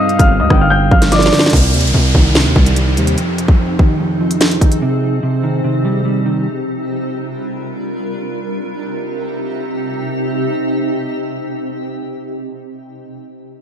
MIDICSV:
0, 0, Header, 1, 8, 480
1, 0, Start_track
1, 0, Key_signature, -3, "minor"
1, 0, Tempo, 410959
1, 1789, Time_signature, 4, 2, 24, 8
1, 15903, End_track
2, 0, Start_track
2, 0, Title_t, "Grand piano"
2, 0, Program_c, 0, 0
2, 0, Note_on_c, 0, 75, 85
2, 0, Note_on_c, 0, 87, 103
2, 208, Note_off_c, 0, 87, 0
2, 212, Note_off_c, 0, 75, 0
2, 221, Note_on_c, 0, 89, 82
2, 232, Note_on_c, 0, 77, 63
2, 434, Note_off_c, 0, 89, 0
2, 440, Note_off_c, 0, 77, 0
2, 466, Note_on_c, 0, 87, 80
2, 475, Note_on_c, 0, 75, 62
2, 676, Note_off_c, 0, 87, 0
2, 681, Note_off_c, 0, 75, 0
2, 717, Note_on_c, 0, 89, 84
2, 726, Note_on_c, 0, 77, 69
2, 818, Note_off_c, 0, 89, 0
2, 822, Note_on_c, 0, 91, 88
2, 823, Note_off_c, 0, 77, 0
2, 831, Note_on_c, 0, 79, 70
2, 1034, Note_off_c, 0, 91, 0
2, 1039, Note_off_c, 0, 79, 0
2, 1067, Note_on_c, 0, 89, 78
2, 1076, Note_on_c, 0, 77, 60
2, 1277, Note_off_c, 0, 89, 0
2, 1282, Note_off_c, 0, 77, 0
2, 1307, Note_on_c, 0, 86, 86
2, 1316, Note_on_c, 0, 74, 63
2, 1759, Note_off_c, 0, 86, 0
2, 1764, Note_off_c, 0, 74, 0
2, 15903, End_track
3, 0, Start_track
3, 0, Title_t, "Soft synth lead"
3, 0, Program_c, 1, 80
3, 0, Note_on_c, 1, 77, 109
3, 547, Note_off_c, 1, 77, 0
3, 587, Note_on_c, 1, 79, 82
3, 816, Note_off_c, 1, 79, 0
3, 826, Note_on_c, 1, 77, 89
3, 1278, Note_off_c, 1, 77, 0
3, 1310, Note_on_c, 1, 74, 85
3, 1538, Note_off_c, 1, 74, 0
3, 1549, Note_on_c, 1, 74, 80
3, 1777, Note_off_c, 1, 74, 0
3, 15903, End_track
4, 0, Start_track
4, 0, Title_t, "Ambient pad"
4, 0, Program_c, 2, 92
4, 1791, Note_on_c, 2, 63, 73
4, 3710, Note_on_c, 2, 60, 72
4, 5592, Note_off_c, 2, 63, 0
4, 7511, Note_off_c, 2, 60, 0
4, 9467, Note_on_c, 2, 48, 80
4, 9467, Note_on_c, 2, 60, 72
4, 9468, Note_on_c, 2, 63, 73
4, 9468, Note_on_c, 2, 67, 89
4, 14196, Note_off_c, 2, 48, 0
4, 14196, Note_off_c, 2, 60, 0
4, 14196, Note_off_c, 2, 63, 0
4, 14196, Note_off_c, 2, 67, 0
4, 15903, End_track
5, 0, Start_track
5, 0, Title_t, "Clean electric guitar"
5, 0, Program_c, 3, 27
5, 0, Note_on_c, 3, 43, 96
5, 336, Note_off_c, 3, 43, 0
5, 350, Note_on_c, 3, 43, 90
5, 590, Note_on_c, 3, 50, 85
5, 815, Note_off_c, 3, 43, 0
5, 829, Note_on_c, 3, 43, 91
5, 1069, Note_on_c, 3, 53, 86
5, 1292, Note_off_c, 3, 53, 0
5, 1306, Note_on_c, 3, 53, 88
5, 1537, Note_off_c, 3, 50, 0
5, 1551, Note_on_c, 3, 50, 87
5, 1785, Note_off_c, 3, 50, 0
5, 1788, Note_off_c, 3, 53, 0
5, 1789, Note_off_c, 3, 43, 0
5, 1790, Note_on_c, 3, 48, 88
5, 2255, Note_off_c, 3, 48, 0
5, 2269, Note_on_c, 3, 48, 83
5, 2510, Note_on_c, 3, 51, 87
5, 2734, Note_off_c, 3, 48, 0
5, 2748, Note_on_c, 3, 48, 87
5, 2990, Note_on_c, 3, 55, 82
5, 3216, Note_off_c, 3, 55, 0
5, 3230, Note_on_c, 3, 55, 89
5, 3457, Note_off_c, 3, 51, 0
5, 3471, Note_on_c, 3, 51, 75
5, 3708, Note_on_c, 3, 41, 96
5, 3709, Note_off_c, 3, 48, 0
5, 3709, Note_off_c, 3, 55, 0
5, 3710, Note_off_c, 3, 51, 0
5, 4178, Note_off_c, 3, 41, 0
5, 4192, Note_on_c, 3, 41, 82
5, 4431, Note_on_c, 3, 51, 77
5, 4658, Note_off_c, 3, 41, 0
5, 4672, Note_on_c, 3, 41, 89
5, 4913, Note_on_c, 3, 53, 82
5, 5137, Note_off_c, 3, 53, 0
5, 5151, Note_on_c, 3, 53, 79
5, 5374, Note_off_c, 3, 51, 0
5, 5384, Note_off_c, 3, 53, 0
5, 5388, Note_on_c, 3, 51, 82
5, 5629, Note_off_c, 3, 51, 0
5, 5630, Note_off_c, 3, 41, 0
5, 5631, Note_on_c, 3, 48, 101
5, 6094, Note_off_c, 3, 48, 0
5, 6108, Note_on_c, 3, 48, 87
5, 6348, Note_on_c, 3, 51, 83
5, 6577, Note_off_c, 3, 48, 0
5, 6591, Note_on_c, 3, 48, 99
5, 6830, Note_on_c, 3, 55, 91
5, 7053, Note_off_c, 3, 55, 0
5, 7067, Note_on_c, 3, 55, 89
5, 7296, Note_off_c, 3, 51, 0
5, 7310, Note_on_c, 3, 51, 85
5, 7548, Note_off_c, 3, 55, 0
5, 7550, Note_off_c, 3, 48, 0
5, 7550, Note_off_c, 3, 51, 0
5, 15903, End_track
6, 0, Start_track
6, 0, Title_t, "808-style bass"
6, 0, Program_c, 4, 38
6, 228, Note_on_c, 4, 31, 112
6, 470, Note_on_c, 4, 38, 97
6, 488, Note_off_c, 4, 31, 0
6, 584, Note_off_c, 4, 38, 0
6, 589, Note_on_c, 4, 31, 104
6, 1050, Note_off_c, 4, 31, 0
6, 1068, Note_on_c, 4, 31, 112
6, 1529, Note_off_c, 4, 31, 0
6, 1789, Note_on_c, 4, 36, 108
6, 2029, Note_on_c, 4, 39, 99
6, 2046, Note_off_c, 4, 36, 0
6, 2150, Note_on_c, 4, 36, 97
6, 2168, Note_off_c, 4, 39, 0
6, 2264, Note_off_c, 4, 36, 0
6, 2269, Note_on_c, 4, 36, 107
6, 2499, Note_off_c, 4, 36, 0
6, 2509, Note_on_c, 4, 36, 105
6, 2869, Note_on_c, 4, 39, 96
6, 2887, Note_off_c, 4, 36, 0
6, 2983, Note_off_c, 4, 39, 0
6, 2988, Note_on_c, 4, 36, 109
6, 3468, Note_on_c, 4, 39, 99
6, 3485, Note_off_c, 4, 36, 0
6, 3696, Note_off_c, 4, 39, 0
6, 15903, End_track
7, 0, Start_track
7, 0, Title_t, "Downlifter"
7, 0, Program_c, 5, 103
7, 1789, Note_on_c, 5, 60, 87
7, 5629, Note_off_c, 5, 60, 0
7, 15903, End_track
8, 0, Start_track
8, 0, Title_t, "Drums"
8, 108, Note_on_c, 9, 42, 48
8, 225, Note_off_c, 9, 42, 0
8, 227, Note_on_c, 9, 42, 81
8, 228, Note_on_c, 9, 36, 109
8, 343, Note_off_c, 9, 42, 0
8, 345, Note_off_c, 9, 36, 0
8, 588, Note_on_c, 9, 36, 94
8, 588, Note_on_c, 9, 37, 99
8, 705, Note_off_c, 9, 36, 0
8, 705, Note_off_c, 9, 37, 0
8, 1068, Note_on_c, 9, 36, 98
8, 1185, Note_off_c, 9, 36, 0
8, 1189, Note_on_c, 9, 38, 65
8, 1190, Note_on_c, 9, 42, 86
8, 1306, Note_off_c, 9, 38, 0
8, 1306, Note_off_c, 9, 42, 0
8, 1306, Note_on_c, 9, 42, 100
8, 1308, Note_on_c, 9, 38, 64
8, 1389, Note_off_c, 9, 38, 0
8, 1389, Note_on_c, 9, 38, 65
8, 1423, Note_off_c, 9, 42, 0
8, 1430, Note_on_c, 9, 42, 80
8, 1469, Note_off_c, 9, 38, 0
8, 1469, Note_on_c, 9, 38, 85
8, 1547, Note_off_c, 9, 42, 0
8, 1549, Note_off_c, 9, 38, 0
8, 1549, Note_on_c, 9, 38, 82
8, 1550, Note_on_c, 9, 46, 60
8, 1627, Note_off_c, 9, 38, 0
8, 1627, Note_on_c, 9, 38, 109
8, 1667, Note_off_c, 9, 46, 0
8, 1668, Note_on_c, 9, 42, 53
8, 1708, Note_off_c, 9, 38, 0
8, 1708, Note_on_c, 9, 38, 100
8, 1748, Note_off_c, 9, 42, 0
8, 1748, Note_on_c, 9, 42, 74
8, 1789, Note_off_c, 9, 42, 0
8, 1789, Note_on_c, 9, 36, 107
8, 1789, Note_on_c, 9, 42, 81
8, 1825, Note_off_c, 9, 38, 0
8, 1828, Note_off_c, 9, 42, 0
8, 1828, Note_on_c, 9, 42, 85
8, 1906, Note_off_c, 9, 36, 0
8, 1945, Note_off_c, 9, 42, 0
8, 2029, Note_on_c, 9, 42, 64
8, 2108, Note_off_c, 9, 42, 0
8, 2108, Note_on_c, 9, 42, 64
8, 2189, Note_off_c, 9, 42, 0
8, 2189, Note_on_c, 9, 42, 65
8, 2305, Note_off_c, 9, 42, 0
8, 2509, Note_on_c, 9, 36, 97
8, 2626, Note_off_c, 9, 36, 0
8, 2747, Note_on_c, 9, 38, 121
8, 2864, Note_off_c, 9, 38, 0
8, 2989, Note_on_c, 9, 36, 97
8, 3106, Note_off_c, 9, 36, 0
8, 3111, Note_on_c, 9, 42, 81
8, 3228, Note_off_c, 9, 42, 0
8, 3228, Note_on_c, 9, 42, 94
8, 3344, Note_off_c, 9, 42, 0
8, 3472, Note_on_c, 9, 42, 79
8, 3588, Note_off_c, 9, 42, 0
8, 3589, Note_on_c, 9, 42, 93
8, 3706, Note_off_c, 9, 42, 0
8, 3710, Note_on_c, 9, 42, 76
8, 3827, Note_off_c, 9, 42, 0
8, 3952, Note_on_c, 9, 42, 76
8, 4069, Note_off_c, 9, 42, 0
8, 4069, Note_on_c, 9, 36, 104
8, 4186, Note_off_c, 9, 36, 0
8, 4429, Note_on_c, 9, 36, 94
8, 4546, Note_off_c, 9, 36, 0
8, 5031, Note_on_c, 9, 42, 82
8, 5147, Note_off_c, 9, 42, 0
8, 5147, Note_on_c, 9, 42, 94
8, 5150, Note_on_c, 9, 38, 119
8, 5264, Note_off_c, 9, 42, 0
8, 5267, Note_off_c, 9, 38, 0
8, 5271, Note_on_c, 9, 42, 75
8, 5388, Note_off_c, 9, 42, 0
8, 5389, Note_on_c, 9, 36, 102
8, 5391, Note_on_c, 9, 42, 80
8, 5506, Note_off_c, 9, 36, 0
8, 5507, Note_off_c, 9, 42, 0
8, 5508, Note_on_c, 9, 42, 86
8, 5625, Note_off_c, 9, 42, 0
8, 15903, End_track
0, 0, End_of_file